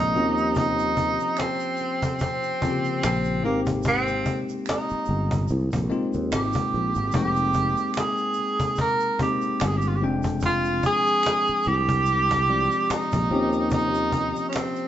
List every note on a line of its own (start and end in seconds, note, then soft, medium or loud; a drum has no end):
0.00 0.14 A#1 medium
0.00 0.14 F3 medium
0.00 0.15 G#3 medium
0.00 0.15 C4 medium
0.00 0.53 D#4 loud
0.00 0.16 F4 medium
0.00 0.16 D5 medium
0.15 1.17 D#2 medium
0.15 1.68 F3 medium
0.15 1.69 A#3 medium
0.15 1.69 C4 medium
0.15 1.69 C#4 medium
0.15 0.23 F#4 medium
0.15 cajon slap soft
0.23 1.73 G4 medium
0.38 shaker soft
0.55 1.41 D#4 loud
0.55 cajon bass loud
0.55 shaker medium
0.79 shaker soft
0.97 cajon bass medium
0.97 shaker soft
1.20 cajon slap soft
1.20 shaker soft
1.37 2.21 C4 medium
1.37 finger snap medium
1.37 cajon slap loud
1.37 shaker medium
1.60 shaker soft
1.77 shaker soft
1.81 cajon slap soft
2.02 cajon bass loud
2.02 shaker soft
2.19 2.99 C4 loud
2.19 cajon bass loud
2.19 shaker medium
2.43 shaker soft
2.62 3.45 C#3 medium
2.62 3.44 F3 medium
2.62 3.43 A#3 medium
2.62 3.43 C4 medium
2.62 2.70 F4 medium
2.62 cajon bass loud
2.70 3.44 G4 medium
2.85 cajon slap soft
2.85 shaker medium
3.03 3.45 A#1 medium
3.03 3.42 C4 medium
3.03 finger snap medium
3.03 cajon slap loud
3.03 shaker medium
3.24 shaker medium
3.43 4.23 G#1 medium
3.43 4.97 G#3 medium
3.43 4.97 A#3 medium
3.43 3.61 A#3 medium
3.43 4.98 C4 medium
3.43 4.98 D#4 medium
3.43 4.98 G4 medium
3.66 cajon bass medium
3.66 shaker soft
3.83 cajon bass loud
3.83 shaker medium
3.88 4.39 C4 loud
4.08 shaker soft
4.25 cajon bass medium
4.25 shaker soft
4.49 cajon slap soft
4.49 shaker medium
4.66 finger snap medium
4.66 cajon slap loud
4.66 shaker medium
4.70 5.47 D#4 medium
4.90 muted fretless electric bass stroke soft
4.90 shaker soft
5.06 5.46 G1 medium
5.06 shaker soft
5.10 cajon slap soft
5.31 cajon bass medium
5.31 shaker soft
5.48 5.71 C2 loud
5.48 cajon slap soft
5.48 shaker medium
5.72 5.90 A#1 medium
5.72 cajon bass medium
5.72 shaker soft
5.90 7.05 G#3 medium
5.90 7.05 A#3 medium
5.90 7.06 C4 medium
5.90 7.06 D#4 medium
5.90 7.06 F4 medium
5.90 cajon slap soft
6.13 6.31 D#2 medium
6.13 cajon slap soft
6.13 shaker medium
6.32 6.53 G#1 medium
6.32 7.11 G4 medium
6.32 finger snap medium
6.32 cajon slap loud
6.32 shaker medium
6.53 cajon bass medium
6.53 shaker medium
6.74 6.94 A#1 medium
6.74 cajon slap soft
6.95 7.13 G#1 medium
6.95 shaker soft
7.12 7.74 F1 medium
7.12 8.67 G#3 medium
7.12 8.67 A#3 medium
7.12 8.68 C4 medium
7.12 8.68 D#4 medium
7.12 8.68 G5 medium
7.12 cajon bass loud
7.12 shaker medium
7.16 7.93 G4 loud
7.36 shaker soft
7.53 cajon bass medium
7.53 shaker soft
7.77 cajon slap soft
7.77 shaker soft
7.93 8.00 G4 medium
7.93 finger snap medium
7.93 cajon slap loud
7.93 shaker medium
7.98 8.79 G#4 medium
8.17 shaker soft
8.33 shaker soft
8.39 cajon slap soft
8.59 cajon bass loud
8.59 shaker soft
8.76 cajon bass loud
8.76 shaker medium
8.81 9.18 A#4 loud
9.00 shaker soft
9.19 10.01 G#3 medium
9.19 10.02 A#3 medium
9.19 10.02 C4 medium
9.19 10.02 D#4 medium
9.19 10.02 G4 medium
9.19 9.69 G4 medium
9.19 cajon bass loud
9.41 cajon slap soft
9.41 shaker medium
9.60 10.03 G1 medium
9.60 finger snap medium
9.60 cajon slap loud
9.60 shaker medium
9.67 9.79 G#4 medium
9.78 9.89 G4 medium
9.78 shaker soft
9.88 9.97 F4 medium
9.96 10.03 G4 medium
10.02 10.80 F1 medium
10.02 11.55 F3 medium
10.02 11.55 G#3 medium
10.02 11.56 C4 medium
10.02 11.56 D4 medium
10.02 11.56 G5 medium
10.23 cajon bass medium
10.23 shaker soft
10.40 cajon bass loud
10.40 shaker medium
10.46 10.82 F4 loud
10.65 shaker soft
10.83 11.69 G#4 loud
10.83 cajon bass medium
10.83 shaker soft
11.07 cajon slap soft
11.07 shaker soft
11.23 finger snap medium
11.23 cajon slap loud
11.23 shaker medium
11.47 muted fretless electric bass stroke soft
11.47 shaker soft
11.64 12.68 C2 medium
11.64 cajon slap soft
11.64 shaker soft
11.68 12.92 G4 loud
11.89 cajon bass medium
11.89 shaker soft
12.06 cajon slap soft
12.06 shaker medium
12.30 cajon bass loud
12.30 shaker soft
12.48 13.29 F3 medium
12.48 13.31 G#3 medium
12.48 13.30 C4 medium
12.48 13.31 G4 medium
12.48 13.31 D5 medium
12.48 cajon slap soft
12.72 cajon slap soft
12.72 shaker medium
12.90 13.72 D#4 loud
12.90 finger snap medium
12.90 muted fretless electric bass stroke soft
12.90 cajon slap medium
12.90 shaker medium
13.12 13.29 A#1 medium
13.12 cajon bass medium
13.12 shaker soft
13.31 14.32 D#2 loud
13.31 14.84 F3 medium
13.31 14.84 A#3 medium
13.31 14.84 C4 medium
13.31 14.85 C#4 medium
13.31 14.85 G4 medium
13.31 cajon slap soft
13.53 shaker soft
13.70 14.45 D#4 loud
13.70 cajon bass loud
13.70 shaker medium
13.95 shaker soft
14.12 cajon bass medium
14.12 shaker soft
14.36 cajon slap soft
14.36 shaker soft
14.49 14.57 C#4 medium
14.49 finger snap medium
14.49 shaker medium
14.55 14.88 C4 loud
14.55 cajon slap loud
14.76 shaker soft